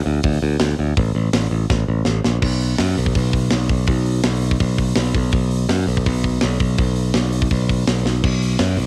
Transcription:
0.06 picked electric bass D2
0.23 picked electric bass D2, kick, open hi-hat
0.43 picked electric bass D2
0.60 picked electric bass D2, snare, open hi-hat
0.79 picked electric bass D2
0.97 picked electric bass A1, kick, open hi-hat
1.15 picked electric bass A1
1.33 picked electric bass A1, snare, open hi-hat
1.51 picked electric bass A1
1.70 picked electric bass A1, kick, snare
1.88 picked electric bass A1
2.05 picked electric bass A1, snare
2.24 picked electric bass A#1, snare
2.42 picked electric bass B1, kick, crash
2.60 open hi-hat
2.78 picked electric bass F#2, snare, open hi-hat
2.97 picked electric bass B1, open hi-hat
3.06 kick
3.15 picked electric bass B1, kick, open hi-hat
3.33 kick, open hi-hat
3.51 picked electric bass B1, snare, open hi-hat
3.69 picked electric bass B1, kick, open hi-hat
3.87 picked electric bass B1, kick, open hi-hat
4.06 open hi-hat
4.24 picked electric bass B1, snare, open hi-hat
4.42 open hi-hat
4.51 kick
4.60 picked electric bass B1, kick, open hi-hat
4.78 kick, open hi-hat
4.96 picked electric bass B1, snare, open hi-hat
5.14 picked electric bass B1, kick, open hi-hat
5.32 picked electric bass B1, kick, open hi-hat
5.51 open hi-hat
5.69 picked electric bass F#2, snare, open hi-hat
5.87 picked electric bass B1, open hi-hat
5.97 kick
6.06 picked electric bass B1, kick, open hi-hat
6.24 kick, open hi-hat
6.41 picked electric bass B1, snare, open hi-hat
6.60 picked electric bass B1, kick, open hi-hat
6.78 picked electric bass B1, kick, open hi-hat
6.96 open hi-hat
7.14 picked electric bass B1, snare, open hi-hat
7.33 open hi-hat
7.42 kick
7.51 picked electric bass B1, kick, open hi-hat
7.69 kick, open hi-hat
7.87 picked electric bass B1, snare, open hi-hat
8.05 picked electric bass B1, snare
8.24 picked electric bass B1, kick, crash
8.42 open hi-hat
8.59 picked electric bass F#2, snare, open hi-hat
8.77 picked electric bass B1, open hi-hat

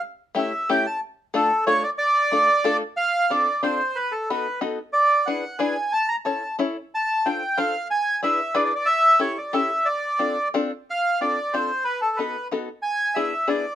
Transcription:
0.35 five-string banjo A3 C#4 E4 G4, bandoneon E5
0.69 five-string banjo A3 C#4 E4 G4, bandoneon G5
0.86 bandoneon A5
1.34 five-string banjo A3 D4 F4 A4, bandoneon A4
1.67 five-string banjo A3 D4 F4 A4, bandoneon C#5
1.83 bandoneon D5
1.98 bandoneon D5
2.32 five-string banjo A3 D4 F4 A4
2.64 five-string banjo A3 D4 F4 A4
2.97 bandoneon F5
3.30 five-string banjo C4 D4 F4 A4, bandoneon D5
3.63 five-string banjo C4 D4 F4 A4, bandoneon C5
3.96 bandoneon B4
4.12 bandoneon A4
4.30 five-string banjo B3 D#4 F#4 A4, bandoneon B4
4.61 five-string banjo B3 D#4 F#4 A4
4.93 bandoneon D5
5.26 five-string banjo D4 E4 G#4 B4, bandoneon F#5
5.59 five-string banjo D4 E4 G#4 B4, bandoneon G#5
5.92 bandoneon A5
6.08 bandoneon A#5
6.25 five-string banjo C#4 E4 A4 C#5, bandoneon A5
6.59 five-string banjo C#4 E4 A4 C#5
6.95 bandoneon A5
7.26 five-string banjo D4 F4 A4 C5, bandoneon G5
7.57 five-string banjo D4 F4 A4 C5, bandoneon F5
7.91 bandoneon G#5
8.23 five-string banjo D4 E4 G#4 B4, bandoneon E5
8.55 five-string banjo D4 E4 G#4 B4, bandoneon D5
8.65 bandoneon D5
8.75 bandoneon D5
8.86 bandoneon E5
9.19 five-string banjo C#4 E4 G4 A4, bandoneon C#5
9.38 bandoneon D5
9.53 five-string banjo C#4 E4 G4 A4, bandoneon E5
9.85 bandoneon D5
10.19 five-string banjo C4 D4 F4 A4
10.54 five-string banjo C4 D4 F4 A4
10.90 bandoneon F5
11.21 five-string banjo C4 D4 F4 A4, bandoneon D5
11.53 five-string banjo C4 D4 F4 A4, bandoneon C5
11.84 bandoneon B4
12.01 bandoneon A4
12.16 five-string banjo B3 D#4 F#4 A4, bandoneon B4
12.51 five-string banjo B3 D#4 F#4 A4
12.82 bandoneon G#5
13.15 five-string banjo B3 D4 E4 G#4, bandoneon E5
13.48 five-string banjo B3 D4 E4 G#4, bandoneon D5

